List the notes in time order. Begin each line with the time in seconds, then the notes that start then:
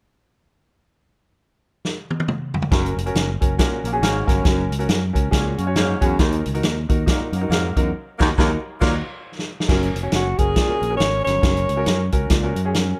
1.85 snare
2.11 high tom
2.20 high tom
2.28 mid tom
2.54 floor tom
2.62 floor tom
2.71 F#1 F#2 C#4 F#4 A#4, kick, snare, closed hi-hat
2.86 closed hi-hat
2.97 F1, closed hi-hat
3.06 C#4 F#4 A#4, closed hi-hat
3.15 F#1, snare, closed hi-hat
3.41 F#1 C#4 F#4 A#4, kick, closed hi-hat
3.57 A#2 F#3 A#3 C#4 F#4 A#4, kick, snare, closed hi-hat
3.72 muted fingered electric bass stroke
3.83 A#1 F#3 A#3 C#4 A#4, closed hi-hat
3.92 C#4 F#4 G#4
4.01 G#1 G#2 A#3 C#4 F#4 C#5, snare, closed hi-hat
4.27 G1 F#2 C#4 F#4 A#4, kick, snare, closed hi-hat
4.43 F#1 F#2 C#4 F#4 A#4, kick, snare, closed hi-hat
4.70 C#2, closed hi-hat
4.79 C#4 F#4 A#4, closed hi-hat
4.89 F#2, snare, closed hi-hat
5.13 C#2 C#4 F#4 A#4, kick, closed hi-hat
5.31 C#2 A#2 A#3 C#4 F#4 G#4 C#5, kick, snare, closed hi-hat
5.57 F#2 A#3 C#4 F#4 C#5, closed hi-hat
5.66 C#4 F#4 C#5
5.75 G#2 A#3 C#4 F#4 C#5, snare, closed hi-hat
6.01 E2 F#2 C#4 F#4 G#4, kick, closed hi-hat
6.19 D#2 D#3 D#4 F#4 A#4, kick, snare, closed hi-hat
6.32 closed hi-hat
6.46 C#2, closed hi-hat
6.54 D#4 F#4 A#4, closed hi-hat
6.63 D#2, snare, closed hi-hat
6.89 D#2 D#4 F#4 A#4, kick, closed hi-hat
7.06 A#2 F#3 A#3 D#4 F#4 A#4, kick, snare, closed hi-hat
7.21 muted fingered electric bass stroke
7.32 F#2 F#3 A#3 D#4 A#4, closed hi-hat
7.41 D#4 F#4 A#4
7.50 F2 G#2 F#3 A#3 D#4 A#4, snare, closed hi-hat
7.76 E2 F#2 D#4 F#4 A#4, kick, closed hi-hat
8.19 D#2 F#3 A#3 D#4 F#4 A#4, kick, snare, crash
8.37 D#2 F#3 A#3 D#4 F#4 A#4, kick, snare
8.80 D#2 A#2 F#3 A#3 D#4 F#4 A#4, kick, snare, crash
9.39 snare
9.60 snare
9.68 F#1 F#2 C#4 F#4 A#4, kick, snare, crash
9.83 closed hi-hat
9.94 F1, closed hi-hat
10.03 C#4 F#4 C#5
10.12 F#1 F#4, snare, closed hi-hat
10.38 F#1 C#4 F#4 G#4 A#4, kick, closed hi-hat
10.56 A#2, kick, snare, closed hi-hat
10.68 C#4 F#4 A#4, muted fingered electric bass stroke
10.82 A#1, closed hi-hat
10.90 C#4 F#4 A#4
10.97 G#1 C#5, snare, closed hi-hat
11.24 G1 F#2 C#5, snare, closed hi-hat
11.42 F#1 F#2 C#4 F#4 A#4, kick, snare, closed hi-hat
11.57 closed hi-hat
11.69 C#2, closed hi-hat
11.76 C#4 F#4 A#4
11.86 F#2, snare, closed hi-hat
12.12 C#2 C#4 F#4 A#4, kick, closed hi-hat
12.30 C#2 A#2, kick, snare, closed hi-hat
12.43 C#4 F#4 A#4
12.55 F#2, closed hi-hat
12.65 C#4 F#4 G#4
12.73 F#4 A#4, snare, closed hi-hat